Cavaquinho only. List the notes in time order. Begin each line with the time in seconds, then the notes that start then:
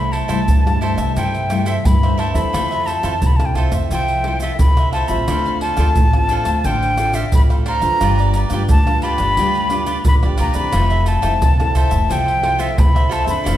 Already playing: C5 E5
0.00 A4
0.12 E4 A4 C5 E5
0.28 E4 A4 C5 E5
0.81 E4 A4 C5 E5
0.97 A4 C5 E5
1.17 E4 A4 C5 E5
1.50 E4 A4 C5 E5
1.66 E4 A4 C5 E5
2.03 A4 C5 E5
2.18 E4 A4 C5 E5
2.34 A4 C5 E5
2.53 F4 A4 C5 E5
2.71 A4 C5 E5
2.86 F4 A4 C5 E5
3.04 F4 A4 C5 E5
3.56 F4 A4 C5 E5
3.72 A4 C5 E5
3.92 F4 A4 C5 E5
4.26 F4 A4 C5 E5
4.42 F4 A4 C5 E5
4.79 A4 C5 E5
4.94 F4 A4 C5 E5
5.10 A4 C5 E5
5.29 D4 A4 C5 F5
5.46 A4 C5 F5
5.62 D4 A4 C5 F5
5.78 D4 A4 C5 F5
6.30 D4 A4 C5 F5
6.46 A4 C5 F5
6.66 D4 A4 C5 F5
6.98 D4 A4 C5 F5
7.14 D4 A4 C5 F5
7.50 A4 C5 F5
7.66 D4 A4 C5 F5
7.82 A4 C5 F5
8.02 F4 G4 B4 D5
8.20 G4 B4 D5
8.35 F4 G4 B4 D5
8.52 F4 G4 B4 D5
9.03 F4 G4 B4 D5
9.20 G4 B4 D5
9.38 F4 G4 B4 D5
9.72 F4 G4 B4 D5
9.87 F4 G4 B4 D5
10.23 G4 B4 D5
10.38 F4 G4 B4 D5
10.54 G4 B4 D5
10.73 F4 A4 C5 E5
10.91 A4 C5 E5
11.06 F4 A4 C5 E5
11.22 F4 A4 C5 E5
11.75 F4 A4 C5 E5
11.90 A4 C5 E5
12.09 F4 A4 C5 E5
12.43 F4 A4 C5 E5
12.58 F4 A4 C5 E5
12.95 A4 C5 E5
13.09 F4 A4 C5 E5
13.24 A4 C5 E5
13.44 D4 A4 C5 F5